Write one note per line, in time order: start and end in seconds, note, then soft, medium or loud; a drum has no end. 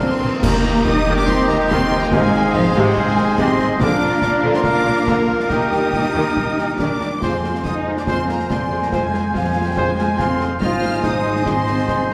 0.00 0.20 D3 medium
0.00 0.21 G#3 medium
0.00 0.39 C4 medium
0.00 0.21 D4 medium
0.00 0.39 C6 loud
0.20 0.28 A#1 medium
0.20 0.29 A#2 medium
0.20 0.42 D#3 medium
0.20 0.28 G#3 medium
0.20 0.28 F4 medium
0.41 0.50 D#2 loud
0.41 0.63 D#3 medium
0.41 0.85 A#3 loud
0.41 2.08 A#3 medium
0.41 3.76 D#4 loud
0.41 3.76 D#4 medium
0.41 2.08 G4 medium
0.41 2.09 G4 medium
0.41 2.07 A#4 medium
0.41 3.76 D#5 medium
0.41 0.84 A#5 loud
0.41 concert bass drum medium
0.41 snare medium
0.41 crash medium
0.63 0.71 D#2 medium
0.63 0.72 D#3 medium
0.63 snare medium
0.75 snare medium
0.84 0.93 D#2 medium
0.84 0.94 D#3 medium
0.84 1.18 D#4 loud
0.84 1.17 D#6 loud
0.84 concert bass drum medium
0.84 snare medium
1.06 1.14 D#2 medium
1.06 1.27 D#3 medium
1.17 1.28 D4 medium
1.17 1.28 D6 loud
1.17 snare medium
1.27 1.49 C4 loud
1.27 1.73 D#5 medium
1.27 1.49 C6 loud
1.27 concert bass drum medium
1.27 snare medium
1.48 1.57 D#2 medium
1.48 1.58 D#3 medium
1.48 1.71 A#3 loud
1.48 1.56 A#5 loud
1.48 snare medium
1.60 snare medium
1.69 1.78 D#2 loud
1.69 1.90 D#3 loud
1.69 2.01 C4 medium
1.69 2.15 G5 loud
1.69 2.01 C6 loud
1.69 concert bass drum medium
1.69 snare medium
1.91 1.99 D#2 medium
1.91 2.00 D#3 medium
2.03 2.12 A#3 loud
2.03 2.13 A#5 loud
2.03 snare medium
2.12 2.20 G#1 loud
2.12 2.32 C3 medium
2.12 2.54 G#3 loud
2.12 3.80 C4 loud
2.12 3.77 G#4 medium
2.12 3.80 C5 medium
2.12 3.77 C5 loud
2.12 2.57 F5 loud
2.12 2.54 G#5 loud
2.12 concert bass drum medium
2.12 snare medium
2.33 2.41 G#1 medium
2.33 2.42 C3 medium
2.33 snare medium
2.54 2.63 G#1 medium
2.54 2.62 D#3 medium
2.54 2.63 F3 loud
2.54 2.97 D#5 medium
2.54 2.86 F5 loud
2.54 concert bass drum medium
2.54 snare medium
2.76 2.84 G#1 loud
2.76 2.95 C3 loud
2.87 2.97 G3 medium
2.87 2.98 G5 loud
2.97 3.39 G#3 loud
2.97 3.38 F5 loud
2.97 3.39 G#5 loud
2.97 concert bass drum medium
3.17 3.25 G#1 medium
3.17 3.25 D#3 medium
3.17 snare medium
3.38 3.46 G#1 loud
3.38 3.58 C3 loud
3.38 3.60 C4 loud
3.38 3.80 D#5 medium
3.38 3.60 C6 loud
3.38 concert bass drum medium
3.38 snare medium
3.59 3.67 G#1 medium
3.59 3.67 C3 medium
3.59 snare medium
3.79 3.87 A#1 loud
3.79 4.00 D3 medium
3.79 6.97 A#3 loud
3.79 5.47 D4 medium
3.79 4.20 D4 loud
3.79 5.46 F4 medium
3.79 6.97 A#4 medium
3.79 6.98 A#4 medium
3.79 6.97 A#4 medium
3.79 4.64 D5 medium
3.79 5.47 F5 medium
3.79 4.20 D6 loud
3.79 concert bass drum medium
3.79 snare medium
4.01 4.09 A#1 medium
4.01 4.10 F3 medium
4.01 snare medium
4.12 snare medium
4.21 4.29 A#1 medium
4.21 4.31 A#3 medium
4.21 4.54 D4 loud
4.21 4.31 D6 loud
4.21 concert bass drum medium
4.21 snare medium
4.42 4.50 A#1 medium
4.42 4.63 D3 medium
4.53 4.65 C4 medium
4.53 4.59 C6 loud
4.53 snare medium
4.64 5.07 D4 medium
4.64 5.06 F5 medium
4.64 5.06 D6 loud
4.64 concert bass drum medium
4.64 snare medium
4.85 4.93 A#1 medium
4.85 4.94 A#3 medium
4.85 snare medium
4.97 snare soft
5.07 5.15 A#1 medium
5.07 5.27 D3 medium
5.07 5.39 A#3 medium
5.07 5.52 F5 medium
5.07 5.39 A#5 loud
5.07 concert bass drum medium
5.07 snare medium
5.28 5.36 A#1 soft
5.28 5.36 F3 medium
5.40 5.44 D4 medium
5.40 5.50 D6 medium
5.40 snare medium
5.48 5.57 D#2 medium
5.48 5.70 D#3 medium
5.48 6.77 D#4 medium
5.48 6.98 G4 medium
5.48 7.00 G4 medium
5.48 6.98 G5 medium
5.48 7.01 G5 medium
5.48 6.80 D#6 loud
5.48 concert bass drum medium
5.48 snare medium
5.71 5.79 D#2 medium
5.71 5.80 G3 soft
5.71 snare medium
5.93 6.01 D#2 medium
5.93 6.02 A#3 soft
5.93 concert bass drum medium
5.93 snare medium
6.14 6.22 D#2 medium
6.14 6.35 D#3 medium
6.37 concert bass drum medium
6.57 6.65 D#2 medium
6.57 6.67 A#3 medium
6.57 snare medium
6.78 6.86 D#2 medium
6.78 7.00 D#3 medium
6.78 7.22 D4 medium
6.78 7.21 D6 loud
6.78 concert bass drum medium
6.78 snare medium
7.00 7.08 D#2 soft
7.00 7.10 G3 medium
7.00 snare medium
7.20 7.60 F2 medium
7.20 7.36 G#3 medium
7.20 7.32 G#3 medium
7.20 7.65 C4 medium
7.20 7.36 F4 medium
7.20 7.32 F4 medium
7.20 7.31 G#4 medium
7.20 7.30 C5 medium
7.20 10.57 C5 medium
7.20 7.38 C5 medium
7.20 10.57 G#5 medium
7.20 7.66 C6 medium
7.20 concert bass drum medium
7.20 snare medium
7.20 crash soft
7.44 7.53 G#3 soft
7.44 7.53 F4 soft
7.44 7.52 G#4 soft
7.44 7.52 C5 soft
7.44 snare medium
7.55 snare soft
7.64 8.02 F2 medium
7.64 7.74 G#3 medium
7.64 7.97 D#4 medium
7.64 7.75 F4 medium
7.64 7.73 G#4 soft
7.64 7.73 C5 soft
7.64 7.73 D#6 medium
7.64 concert bass drum medium
7.64 snare medium
7.87 7.95 G#3 soft
7.87 7.95 F4 medium
7.87 7.95 G#4 soft
7.87 7.95 C5 soft
7.97 8.08 D4 medium
7.97 8.02 D6 medium
7.97 snare medium
8.07 8.45 F2 medium
8.07 8.22 G#3 medium
8.07 8.16 G#3 medium
8.07 8.29 C4 medium
8.07 8.22 F4 medium
8.07 8.16 F4 soft
8.07 8.15 G#4 medium
8.07 8.15 C5 medium
8.07 8.23 C5 medium
8.07 8.52 F5 medium
8.07 8.29 C6 loud
8.07 concert bass drum medium
8.07 snare medium
8.29 8.38 G#3 soft
8.29 8.50 A#3 medium
8.29 8.37 F4 soft
8.29 8.38 G#4 soft
8.29 8.37 C5 soft
8.29 8.50 A#5 medium
8.29 snare medium
8.39 snare soft
8.49 8.87 F2 medium
8.49 8.58 G#3 soft
8.49 8.58 C4 medium
8.49 8.58 F4 soft
8.49 8.58 G#4 medium
8.49 8.58 C5 medium
8.49 8.94 D5 medium
8.49 8.82 C6 medium
8.49 concert bass drum medium
8.49 snare medium
8.71 8.79 G#3 soft
8.71 8.79 F4 medium
8.71 8.79 G#4 medium
8.71 8.79 C5 medium
8.82 8.92 A#3 medium
8.82 8.87 A#5 medium
8.82 snare medium
8.90 9.29 F2 medium
8.90 9.06 G#3 medium
8.90 9.00 G#3 medium
8.90 9.35 G#3 medium
8.90 9.06 F4 medium
8.90 9.00 F4 medium
8.90 9.01 G#4 medium
8.90 9.35 C5 medium
8.90 9.07 C5 medium
8.90 9.01 C5 medium
8.90 9.34 G#5 medium
8.90 concert bass drum medium
8.90 snare medium
9.12 9.20 G#3 soft
9.12 9.20 F4 medium
9.12 9.23 G#4 soft
9.12 9.23 C5 soft
9.12 snare soft
9.34 9.71 F2 medium
9.34 9.66 F3 medium
9.34 9.42 G#3 medium
9.34 9.42 F4 medium
9.34 9.43 G#4 medium
9.34 9.43 C5 medium
9.34 9.66 F5 medium
9.34 10.18 G#5 medium
9.34 concert bass drum medium
9.34 snare medium
9.55 9.63 G#3 medium
9.55 9.63 F4 medium
9.55 9.64 G#4 medium
9.55 9.65 C5 soft
9.67 9.77 G3 medium
9.67 9.77 G5 medium
9.75 10.13 F2 medium
9.75 9.83 G#3 medium
9.75 10.18 G#3 medium
9.75 9.92 G#3 medium
9.75 9.84 F4 medium
9.75 9.92 F4 medium
9.75 9.85 G#4 medium
9.75 9.92 C5 medium
9.75 9.86 C5 medium
9.75 10.19 G#5 medium
9.75 concert bass drum medium
9.98 10.06 G#3 medium
9.98 10.06 F4 medium
9.98 10.06 G#4 medium
9.98 10.07 C5 medium
9.98 snare medium
10.19 10.56 F2 medium
10.19 10.27 G#3 medium
10.19 10.40 C4 medium
10.19 10.28 F4 medium
10.19 10.27 G#4 medium
10.19 10.27 C5 medium
10.19 10.60 F5 medium
10.19 10.40 C6 medium
10.19 concert bass drum medium
10.19 snare medium
10.40 10.50 G#3 medium
10.40 10.50 F4 medium
10.40 10.48 G#4 medium
10.40 10.48 C5 medium
10.40 snare soft
10.60 10.98 G#1 medium
10.60 11.00 G#3 medium
10.60 10.69 G#3 medium
10.60 11.00 D#4 medium
10.60 10.70 D#4 medium
10.60 11.00 F4 medium
10.60 10.69 G#4 medium
10.60 12.14 C5 medium
10.60 10.69 C5 medium
10.60 11.01 C5 medium
10.60 11.05 D#5 medium
10.60 12.14 G#5 medium
10.60 11.00 F6 loud
10.60 concert bass drum medium
10.60 snare medium
10.82 10.91 G#3 medium
10.82 10.91 D#4 medium
10.82 10.90 G#4 medium
10.82 10.90 C5 medium
10.82 snare soft
10.93 snare soft
11.02 11.40 G#1 medium
11.02 11.44 G#3 medium
11.02 11.12 G#3 medium
11.02 11.44 D#4 medium
11.02 11.12 D#4 medium
11.02 11.45 D#4 medium
11.02 11.10 G#4 medium
11.02 11.10 C5 medium
11.02 11.45 C5 medium
11.02 11.46 D#6 medium
11.02 concert bass drum medium
11.02 snare medium
11.23 11.34 G#3 medium
11.23 11.33 D#4 medium
11.23 11.32 G#4 medium
11.23 11.31 C5 medium
11.36 snare soft
11.45 11.83 G#1 medium
11.45 12.14 G#3 medium
11.45 11.55 G#3 medium
11.45 12.09 C4 medium
11.45 12.14 D#4 medium
11.45 11.55 D#4 medium
11.45 11.53 G#4 medium
11.45 11.54 C5 medium
11.45 12.14 C5 medium
11.45 12.14 D#5 medium
11.45 12.10 C6 loud
11.45 concert bass drum medium
11.45 snare medium
11.66 11.76 G#3 medium
11.66 11.75 D#4 medium
11.66 11.75 G#4 soft
11.66 11.74 C5 soft
11.66 snare medium
11.78 snare soft
11.87 12.14 G#1 medium
11.87 11.96 G#3 medium
11.87 11.96 D#4 medium
11.87 11.96 G#4 medium
11.87 11.95 C5 soft
11.87 concert bass drum medium
11.87 snare medium
12.10 12.14 G#3 soft
12.10 12.14 A#3 medium
12.10 12.14 D#4 soft
12.10 12.14 G#4 soft
12.10 12.14 C5 soft